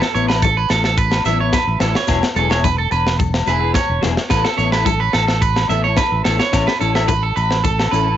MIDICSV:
0, 0, Header, 1, 6, 480
1, 0, Start_track
1, 0, Key_signature, 3, "major"
1, 0, Tempo, 556070
1, 1803, Time_signature, 4, 2, 24, 8
1, 7054, End_track
2, 0, Start_track
2, 0, Title_t, "Clean electric guitar"
2, 0, Program_c, 0, 27
2, 4, Note_on_c, 0, 69, 62
2, 116, Note_off_c, 0, 69, 0
2, 124, Note_on_c, 0, 73, 78
2, 240, Note_off_c, 0, 73, 0
2, 243, Note_on_c, 0, 71, 72
2, 355, Note_off_c, 0, 71, 0
2, 365, Note_on_c, 0, 69, 95
2, 483, Note_off_c, 0, 69, 0
2, 492, Note_on_c, 0, 71, 84
2, 599, Note_off_c, 0, 71, 0
2, 604, Note_on_c, 0, 69, 86
2, 720, Note_off_c, 0, 69, 0
2, 730, Note_on_c, 0, 69, 78
2, 839, Note_off_c, 0, 69, 0
2, 845, Note_on_c, 0, 71, 96
2, 1072, Note_off_c, 0, 71, 0
2, 1085, Note_on_c, 0, 76, 90
2, 1203, Note_off_c, 0, 76, 0
2, 1211, Note_on_c, 0, 73, 72
2, 1319, Note_off_c, 0, 73, 0
2, 1326, Note_on_c, 0, 71, 81
2, 1553, Note_off_c, 0, 71, 0
2, 1562, Note_on_c, 0, 69, 78
2, 1682, Note_off_c, 0, 69, 0
2, 1695, Note_on_c, 0, 73, 64
2, 1920, Note_off_c, 0, 73, 0
2, 2040, Note_on_c, 0, 69, 84
2, 2160, Note_off_c, 0, 69, 0
2, 2166, Note_on_c, 0, 73, 70
2, 2276, Note_off_c, 0, 73, 0
2, 2278, Note_on_c, 0, 71, 98
2, 2399, Note_off_c, 0, 71, 0
2, 2402, Note_on_c, 0, 69, 82
2, 2514, Note_off_c, 0, 69, 0
2, 2520, Note_on_c, 0, 71, 81
2, 2749, Note_off_c, 0, 71, 0
2, 3000, Note_on_c, 0, 71, 89
2, 3230, Note_off_c, 0, 71, 0
2, 3234, Note_on_c, 0, 73, 81
2, 3466, Note_off_c, 0, 73, 0
2, 3712, Note_on_c, 0, 71, 99
2, 3835, Note_on_c, 0, 69, 66
2, 3836, Note_off_c, 0, 71, 0
2, 3950, Note_off_c, 0, 69, 0
2, 3950, Note_on_c, 0, 73, 83
2, 4075, Note_off_c, 0, 73, 0
2, 4078, Note_on_c, 0, 71, 79
2, 4190, Note_on_c, 0, 69, 97
2, 4192, Note_off_c, 0, 71, 0
2, 4315, Note_off_c, 0, 69, 0
2, 4317, Note_on_c, 0, 71, 85
2, 4430, Note_on_c, 0, 69, 88
2, 4431, Note_off_c, 0, 71, 0
2, 4544, Note_off_c, 0, 69, 0
2, 4554, Note_on_c, 0, 69, 71
2, 4670, Note_off_c, 0, 69, 0
2, 4674, Note_on_c, 0, 71, 99
2, 4906, Note_off_c, 0, 71, 0
2, 4916, Note_on_c, 0, 76, 83
2, 5036, Note_off_c, 0, 76, 0
2, 5040, Note_on_c, 0, 73, 74
2, 5153, Note_off_c, 0, 73, 0
2, 5155, Note_on_c, 0, 71, 94
2, 5385, Note_off_c, 0, 71, 0
2, 5389, Note_on_c, 0, 69, 76
2, 5514, Note_off_c, 0, 69, 0
2, 5518, Note_on_c, 0, 73, 73
2, 5751, Note_off_c, 0, 73, 0
2, 5758, Note_on_c, 0, 71, 69
2, 5871, Note_off_c, 0, 71, 0
2, 5875, Note_on_c, 0, 69, 85
2, 5998, Note_off_c, 0, 69, 0
2, 6002, Note_on_c, 0, 76, 68
2, 6108, Note_off_c, 0, 76, 0
2, 6112, Note_on_c, 0, 71, 101
2, 6236, Note_off_c, 0, 71, 0
2, 6240, Note_on_c, 0, 69, 79
2, 6352, Note_on_c, 0, 71, 78
2, 6353, Note_off_c, 0, 69, 0
2, 6586, Note_off_c, 0, 71, 0
2, 6593, Note_on_c, 0, 69, 98
2, 6827, Note_off_c, 0, 69, 0
2, 6832, Note_on_c, 0, 71, 75
2, 7054, Note_off_c, 0, 71, 0
2, 7054, End_track
3, 0, Start_track
3, 0, Title_t, "Clean electric guitar"
3, 0, Program_c, 1, 27
3, 123, Note_on_c, 1, 52, 77
3, 132, Note_on_c, 1, 59, 75
3, 143, Note_on_c, 1, 64, 80
3, 239, Note_off_c, 1, 64, 0
3, 249, Note_off_c, 1, 52, 0
3, 249, Note_on_c, 1, 64, 63
3, 253, Note_off_c, 1, 59, 0
3, 273, Note_on_c, 1, 59, 53
3, 389, Note_off_c, 1, 64, 0
3, 401, Note_off_c, 1, 59, 0
3, 1084, Note_on_c, 1, 52, 71
3, 1090, Note_on_c, 1, 59, 74
3, 1105, Note_on_c, 1, 64, 87
3, 1198, Note_off_c, 1, 64, 0
3, 1208, Note_on_c, 1, 64, 76
3, 1209, Note_off_c, 1, 52, 0
3, 1212, Note_off_c, 1, 59, 0
3, 1232, Note_on_c, 1, 59, 54
3, 1348, Note_off_c, 1, 64, 0
3, 1360, Note_off_c, 1, 59, 0
3, 1548, Note_on_c, 1, 52, 69
3, 1560, Note_on_c, 1, 59, 71
3, 1575, Note_on_c, 1, 64, 70
3, 1704, Note_off_c, 1, 52, 0
3, 1710, Note_off_c, 1, 59, 0
3, 1717, Note_off_c, 1, 64, 0
3, 1789, Note_on_c, 1, 54, 88
3, 1798, Note_on_c, 1, 59, 83
3, 1798, Note_on_c, 1, 64, 105
3, 1803, Note_on_c, 1, 68, 83
3, 1944, Note_off_c, 1, 54, 0
3, 1949, Note_off_c, 1, 59, 0
3, 1949, Note_off_c, 1, 64, 0
3, 1951, Note_off_c, 1, 68, 0
3, 2035, Note_on_c, 1, 54, 76
3, 2038, Note_on_c, 1, 59, 70
3, 2049, Note_on_c, 1, 64, 70
3, 2055, Note_on_c, 1, 68, 70
3, 2143, Note_off_c, 1, 68, 0
3, 2154, Note_on_c, 1, 68, 64
3, 2156, Note_off_c, 1, 64, 0
3, 2164, Note_off_c, 1, 54, 0
3, 2166, Note_off_c, 1, 59, 0
3, 2167, Note_on_c, 1, 64, 65
3, 2175, Note_on_c, 1, 59, 49
3, 2301, Note_off_c, 1, 68, 0
3, 2308, Note_off_c, 1, 64, 0
3, 2312, Note_off_c, 1, 59, 0
3, 2991, Note_on_c, 1, 54, 67
3, 3004, Note_on_c, 1, 64, 83
3, 3011, Note_on_c, 1, 68, 74
3, 3098, Note_off_c, 1, 68, 0
3, 3109, Note_off_c, 1, 64, 0
3, 3109, Note_on_c, 1, 68, 67
3, 3119, Note_on_c, 1, 64, 51
3, 3122, Note_off_c, 1, 54, 0
3, 3132, Note_on_c, 1, 59, 55
3, 3258, Note_off_c, 1, 68, 0
3, 3264, Note_off_c, 1, 64, 0
3, 3270, Note_off_c, 1, 59, 0
3, 3464, Note_on_c, 1, 54, 69
3, 3470, Note_on_c, 1, 59, 67
3, 3474, Note_on_c, 1, 64, 81
3, 3484, Note_on_c, 1, 68, 78
3, 3621, Note_off_c, 1, 54, 0
3, 3624, Note_off_c, 1, 59, 0
3, 3627, Note_off_c, 1, 64, 0
3, 3631, Note_off_c, 1, 68, 0
3, 3706, Note_on_c, 1, 59, 94
3, 3712, Note_on_c, 1, 64, 92
3, 3723, Note_on_c, 1, 69, 93
3, 3863, Note_off_c, 1, 59, 0
3, 3865, Note_off_c, 1, 64, 0
3, 3871, Note_off_c, 1, 69, 0
3, 3942, Note_on_c, 1, 59, 77
3, 3958, Note_on_c, 1, 64, 78
3, 3967, Note_on_c, 1, 69, 85
3, 4065, Note_off_c, 1, 69, 0
3, 4076, Note_on_c, 1, 69, 60
3, 4078, Note_off_c, 1, 59, 0
3, 4085, Note_off_c, 1, 64, 0
3, 4096, Note_on_c, 1, 64, 55
3, 4222, Note_off_c, 1, 69, 0
3, 4232, Note_off_c, 1, 64, 0
3, 4917, Note_on_c, 1, 59, 77
3, 4924, Note_on_c, 1, 64, 82
3, 4934, Note_on_c, 1, 69, 83
3, 5030, Note_off_c, 1, 69, 0
3, 5040, Note_on_c, 1, 69, 65
3, 5045, Note_off_c, 1, 59, 0
3, 5049, Note_off_c, 1, 64, 0
3, 5058, Note_on_c, 1, 64, 63
3, 5184, Note_off_c, 1, 69, 0
3, 5193, Note_off_c, 1, 64, 0
3, 5396, Note_on_c, 1, 59, 66
3, 5409, Note_on_c, 1, 64, 72
3, 5415, Note_on_c, 1, 69, 74
3, 5548, Note_off_c, 1, 59, 0
3, 5554, Note_off_c, 1, 64, 0
3, 5557, Note_off_c, 1, 69, 0
3, 5627, Note_on_c, 1, 61, 89
3, 5635, Note_on_c, 1, 64, 94
3, 5641, Note_on_c, 1, 69, 99
3, 5783, Note_off_c, 1, 61, 0
3, 5788, Note_off_c, 1, 64, 0
3, 5790, Note_off_c, 1, 69, 0
3, 5867, Note_on_c, 1, 61, 73
3, 5883, Note_on_c, 1, 64, 74
3, 5889, Note_on_c, 1, 69, 70
3, 5986, Note_off_c, 1, 69, 0
3, 5996, Note_on_c, 1, 69, 65
3, 6000, Note_off_c, 1, 61, 0
3, 6005, Note_off_c, 1, 64, 0
3, 6016, Note_on_c, 1, 64, 49
3, 6143, Note_off_c, 1, 69, 0
3, 6152, Note_off_c, 1, 64, 0
3, 6837, Note_on_c, 1, 61, 78
3, 6852, Note_on_c, 1, 64, 75
3, 6862, Note_on_c, 1, 69, 77
3, 6951, Note_off_c, 1, 69, 0
3, 6961, Note_on_c, 1, 69, 63
3, 6966, Note_off_c, 1, 61, 0
3, 6974, Note_off_c, 1, 64, 0
3, 6985, Note_on_c, 1, 64, 47
3, 7054, Note_off_c, 1, 64, 0
3, 7054, Note_off_c, 1, 69, 0
3, 7054, End_track
4, 0, Start_track
4, 0, Title_t, "Fingered electric bass"
4, 0, Program_c, 2, 33
4, 129, Note_on_c, 2, 33, 93
4, 553, Note_off_c, 2, 33, 0
4, 607, Note_on_c, 2, 33, 97
4, 1032, Note_off_c, 2, 33, 0
4, 1082, Note_on_c, 2, 33, 93
4, 1296, Note_off_c, 2, 33, 0
4, 1445, Note_on_c, 2, 33, 79
4, 1548, Note_off_c, 2, 33, 0
4, 1560, Note_on_c, 2, 33, 92
4, 1673, Note_off_c, 2, 33, 0
4, 1801, Note_on_c, 2, 28, 83
4, 1913, Note_off_c, 2, 28, 0
4, 2038, Note_on_c, 2, 28, 93
4, 2467, Note_off_c, 2, 28, 0
4, 2519, Note_on_c, 2, 28, 107
4, 2947, Note_off_c, 2, 28, 0
4, 2996, Note_on_c, 2, 28, 92
4, 3212, Note_off_c, 2, 28, 0
4, 3362, Note_on_c, 2, 28, 77
4, 3467, Note_off_c, 2, 28, 0
4, 3477, Note_on_c, 2, 28, 89
4, 3591, Note_off_c, 2, 28, 0
4, 3717, Note_on_c, 2, 33, 92
4, 3831, Note_off_c, 2, 33, 0
4, 3957, Note_on_c, 2, 33, 92
4, 4386, Note_off_c, 2, 33, 0
4, 4441, Note_on_c, 2, 33, 93
4, 4868, Note_off_c, 2, 33, 0
4, 4921, Note_on_c, 2, 33, 98
4, 5135, Note_off_c, 2, 33, 0
4, 5282, Note_on_c, 2, 33, 79
4, 5387, Note_off_c, 2, 33, 0
4, 5402, Note_on_c, 2, 33, 93
4, 5514, Note_off_c, 2, 33, 0
4, 5639, Note_on_c, 2, 33, 98
4, 5752, Note_off_c, 2, 33, 0
4, 5881, Note_on_c, 2, 33, 94
4, 6309, Note_off_c, 2, 33, 0
4, 6361, Note_on_c, 2, 33, 94
4, 6789, Note_off_c, 2, 33, 0
4, 6842, Note_on_c, 2, 33, 89
4, 7054, Note_off_c, 2, 33, 0
4, 7054, End_track
5, 0, Start_track
5, 0, Title_t, "Muted clean electric guitar strokes"
5, 2755, Note_on_c, 9, 29, 94
5, 2842, Note_off_c, 9, 29, 0
5, 2997, Note_on_c, 9, 29, 75
5, 3084, Note_off_c, 9, 29, 0
5, 7054, End_track
6, 0, Start_track
6, 0, Title_t, "Drums"
6, 14, Note_on_c, 9, 38, 79
6, 100, Note_off_c, 9, 38, 0
6, 132, Note_on_c, 9, 70, 62
6, 218, Note_off_c, 9, 70, 0
6, 245, Note_on_c, 9, 68, 69
6, 255, Note_on_c, 9, 38, 71
6, 331, Note_off_c, 9, 68, 0
6, 341, Note_off_c, 9, 38, 0
6, 363, Note_on_c, 9, 70, 88
6, 364, Note_on_c, 9, 36, 103
6, 383, Note_on_c, 9, 62, 34
6, 383, Note_on_c, 9, 63, 95
6, 449, Note_off_c, 9, 70, 0
6, 451, Note_off_c, 9, 36, 0
6, 469, Note_off_c, 9, 62, 0
6, 469, Note_off_c, 9, 63, 0
6, 592, Note_on_c, 9, 68, 65
6, 603, Note_on_c, 9, 38, 67
6, 604, Note_on_c, 9, 70, 66
6, 679, Note_off_c, 9, 68, 0
6, 689, Note_off_c, 9, 38, 0
6, 690, Note_off_c, 9, 70, 0
6, 725, Note_on_c, 9, 38, 57
6, 811, Note_off_c, 9, 38, 0
6, 841, Note_on_c, 9, 70, 89
6, 842, Note_on_c, 9, 36, 102
6, 928, Note_off_c, 9, 36, 0
6, 928, Note_off_c, 9, 70, 0
6, 957, Note_on_c, 9, 68, 64
6, 962, Note_on_c, 9, 38, 68
6, 1044, Note_off_c, 9, 68, 0
6, 1049, Note_off_c, 9, 38, 0
6, 1080, Note_on_c, 9, 70, 88
6, 1081, Note_on_c, 9, 38, 28
6, 1087, Note_on_c, 9, 62, 29
6, 1087, Note_on_c, 9, 63, 68
6, 1166, Note_off_c, 9, 70, 0
6, 1167, Note_off_c, 9, 38, 0
6, 1174, Note_off_c, 9, 62, 0
6, 1174, Note_off_c, 9, 63, 0
6, 1318, Note_on_c, 9, 38, 65
6, 1320, Note_on_c, 9, 68, 69
6, 1322, Note_on_c, 9, 36, 88
6, 1322, Note_on_c, 9, 70, 108
6, 1325, Note_on_c, 9, 63, 79
6, 1405, Note_off_c, 9, 38, 0
6, 1406, Note_off_c, 9, 68, 0
6, 1408, Note_off_c, 9, 36, 0
6, 1409, Note_off_c, 9, 70, 0
6, 1411, Note_off_c, 9, 63, 0
6, 1556, Note_on_c, 9, 38, 77
6, 1562, Note_on_c, 9, 70, 77
6, 1642, Note_off_c, 9, 38, 0
6, 1648, Note_off_c, 9, 70, 0
6, 1686, Note_on_c, 9, 38, 82
6, 1772, Note_off_c, 9, 38, 0
6, 1792, Note_on_c, 9, 70, 94
6, 1798, Note_on_c, 9, 38, 65
6, 1799, Note_on_c, 9, 68, 80
6, 1801, Note_on_c, 9, 36, 86
6, 1878, Note_off_c, 9, 70, 0
6, 1885, Note_off_c, 9, 38, 0
6, 1885, Note_off_c, 9, 68, 0
6, 1888, Note_off_c, 9, 36, 0
6, 1925, Note_on_c, 9, 38, 74
6, 2011, Note_off_c, 9, 38, 0
6, 2039, Note_on_c, 9, 70, 76
6, 2125, Note_off_c, 9, 70, 0
6, 2157, Note_on_c, 9, 68, 76
6, 2166, Note_on_c, 9, 38, 69
6, 2243, Note_off_c, 9, 68, 0
6, 2252, Note_off_c, 9, 38, 0
6, 2280, Note_on_c, 9, 36, 87
6, 2281, Note_on_c, 9, 70, 93
6, 2282, Note_on_c, 9, 62, 31
6, 2282, Note_on_c, 9, 63, 104
6, 2366, Note_off_c, 9, 36, 0
6, 2367, Note_off_c, 9, 70, 0
6, 2368, Note_off_c, 9, 62, 0
6, 2368, Note_off_c, 9, 63, 0
6, 2514, Note_on_c, 9, 68, 76
6, 2519, Note_on_c, 9, 70, 75
6, 2600, Note_off_c, 9, 68, 0
6, 2605, Note_off_c, 9, 70, 0
6, 2647, Note_on_c, 9, 38, 65
6, 2733, Note_off_c, 9, 38, 0
6, 2757, Note_on_c, 9, 70, 91
6, 2760, Note_on_c, 9, 36, 95
6, 2763, Note_on_c, 9, 62, 29
6, 2763, Note_on_c, 9, 63, 81
6, 2844, Note_off_c, 9, 70, 0
6, 2846, Note_off_c, 9, 36, 0
6, 2849, Note_off_c, 9, 62, 0
6, 2849, Note_off_c, 9, 63, 0
6, 2883, Note_on_c, 9, 38, 71
6, 2883, Note_on_c, 9, 68, 71
6, 2969, Note_off_c, 9, 38, 0
6, 2969, Note_off_c, 9, 68, 0
6, 2995, Note_on_c, 9, 70, 78
6, 3000, Note_on_c, 9, 38, 24
6, 3010, Note_on_c, 9, 62, 29
6, 3082, Note_off_c, 9, 70, 0
6, 3086, Note_off_c, 9, 38, 0
6, 3096, Note_off_c, 9, 62, 0
6, 3231, Note_on_c, 9, 38, 70
6, 3238, Note_on_c, 9, 36, 94
6, 3241, Note_on_c, 9, 68, 64
6, 3244, Note_on_c, 9, 70, 101
6, 3247, Note_on_c, 9, 63, 83
6, 3317, Note_off_c, 9, 38, 0
6, 3324, Note_off_c, 9, 36, 0
6, 3328, Note_off_c, 9, 68, 0
6, 3330, Note_off_c, 9, 70, 0
6, 3334, Note_off_c, 9, 63, 0
6, 3475, Note_on_c, 9, 64, 69
6, 3477, Note_on_c, 9, 38, 73
6, 3484, Note_on_c, 9, 70, 73
6, 3562, Note_off_c, 9, 64, 0
6, 3563, Note_off_c, 9, 38, 0
6, 3571, Note_off_c, 9, 70, 0
6, 3603, Note_on_c, 9, 38, 80
6, 3689, Note_off_c, 9, 38, 0
6, 3711, Note_on_c, 9, 38, 67
6, 3717, Note_on_c, 9, 36, 102
6, 3718, Note_on_c, 9, 68, 77
6, 3718, Note_on_c, 9, 70, 97
6, 3797, Note_off_c, 9, 38, 0
6, 3804, Note_off_c, 9, 36, 0
6, 3805, Note_off_c, 9, 68, 0
6, 3805, Note_off_c, 9, 70, 0
6, 3839, Note_on_c, 9, 38, 79
6, 3925, Note_off_c, 9, 38, 0
6, 3961, Note_on_c, 9, 70, 69
6, 4047, Note_off_c, 9, 70, 0
6, 4078, Note_on_c, 9, 38, 72
6, 4084, Note_on_c, 9, 68, 70
6, 4164, Note_off_c, 9, 38, 0
6, 4170, Note_off_c, 9, 68, 0
6, 4196, Note_on_c, 9, 36, 103
6, 4199, Note_on_c, 9, 70, 91
6, 4201, Note_on_c, 9, 62, 38
6, 4201, Note_on_c, 9, 63, 107
6, 4282, Note_off_c, 9, 36, 0
6, 4285, Note_off_c, 9, 70, 0
6, 4287, Note_off_c, 9, 62, 0
6, 4287, Note_off_c, 9, 63, 0
6, 4431, Note_on_c, 9, 38, 64
6, 4441, Note_on_c, 9, 68, 78
6, 4518, Note_off_c, 9, 38, 0
6, 4527, Note_off_c, 9, 68, 0
6, 4561, Note_on_c, 9, 38, 69
6, 4647, Note_off_c, 9, 38, 0
6, 4677, Note_on_c, 9, 70, 97
6, 4678, Note_on_c, 9, 36, 90
6, 4679, Note_on_c, 9, 62, 36
6, 4763, Note_off_c, 9, 70, 0
6, 4764, Note_off_c, 9, 36, 0
6, 4765, Note_off_c, 9, 62, 0
6, 4800, Note_on_c, 9, 68, 70
6, 4803, Note_on_c, 9, 38, 65
6, 4886, Note_off_c, 9, 68, 0
6, 4889, Note_off_c, 9, 38, 0
6, 4911, Note_on_c, 9, 62, 36
6, 4911, Note_on_c, 9, 63, 79
6, 4922, Note_on_c, 9, 70, 75
6, 4997, Note_off_c, 9, 62, 0
6, 4997, Note_off_c, 9, 63, 0
6, 5008, Note_off_c, 9, 70, 0
6, 5149, Note_on_c, 9, 38, 76
6, 5152, Note_on_c, 9, 68, 78
6, 5152, Note_on_c, 9, 70, 104
6, 5153, Note_on_c, 9, 63, 90
6, 5158, Note_on_c, 9, 36, 89
6, 5236, Note_off_c, 9, 38, 0
6, 5238, Note_off_c, 9, 70, 0
6, 5239, Note_off_c, 9, 63, 0
6, 5239, Note_off_c, 9, 68, 0
6, 5244, Note_off_c, 9, 36, 0
6, 5394, Note_on_c, 9, 38, 79
6, 5399, Note_on_c, 9, 70, 73
6, 5480, Note_off_c, 9, 38, 0
6, 5486, Note_off_c, 9, 70, 0
6, 5520, Note_on_c, 9, 38, 77
6, 5607, Note_off_c, 9, 38, 0
6, 5633, Note_on_c, 9, 62, 36
6, 5637, Note_on_c, 9, 38, 75
6, 5639, Note_on_c, 9, 68, 73
6, 5639, Note_on_c, 9, 70, 100
6, 5640, Note_on_c, 9, 36, 89
6, 5719, Note_off_c, 9, 62, 0
6, 5723, Note_off_c, 9, 38, 0
6, 5725, Note_off_c, 9, 68, 0
6, 5725, Note_off_c, 9, 70, 0
6, 5726, Note_off_c, 9, 36, 0
6, 5765, Note_on_c, 9, 38, 79
6, 5851, Note_off_c, 9, 38, 0
6, 5880, Note_on_c, 9, 70, 75
6, 5966, Note_off_c, 9, 70, 0
6, 6002, Note_on_c, 9, 38, 70
6, 6007, Note_on_c, 9, 68, 77
6, 6088, Note_off_c, 9, 38, 0
6, 6093, Note_off_c, 9, 68, 0
6, 6116, Note_on_c, 9, 62, 39
6, 6116, Note_on_c, 9, 63, 122
6, 6118, Note_on_c, 9, 36, 90
6, 6120, Note_on_c, 9, 70, 93
6, 6202, Note_off_c, 9, 62, 0
6, 6202, Note_off_c, 9, 63, 0
6, 6205, Note_off_c, 9, 36, 0
6, 6206, Note_off_c, 9, 70, 0
6, 6361, Note_on_c, 9, 70, 70
6, 6367, Note_on_c, 9, 68, 76
6, 6448, Note_off_c, 9, 70, 0
6, 6453, Note_off_c, 9, 68, 0
6, 6480, Note_on_c, 9, 38, 65
6, 6567, Note_off_c, 9, 38, 0
6, 6600, Note_on_c, 9, 70, 96
6, 6602, Note_on_c, 9, 36, 90
6, 6603, Note_on_c, 9, 62, 33
6, 6603, Note_on_c, 9, 63, 80
6, 6603, Note_on_c, 9, 64, 76
6, 6686, Note_off_c, 9, 70, 0
6, 6688, Note_off_c, 9, 36, 0
6, 6689, Note_off_c, 9, 62, 0
6, 6689, Note_off_c, 9, 63, 0
6, 6689, Note_off_c, 9, 64, 0
6, 6730, Note_on_c, 9, 38, 63
6, 6730, Note_on_c, 9, 68, 70
6, 6816, Note_off_c, 9, 38, 0
6, 6817, Note_off_c, 9, 68, 0
6, 6849, Note_on_c, 9, 70, 87
6, 6935, Note_off_c, 9, 70, 0
6, 7054, End_track
0, 0, End_of_file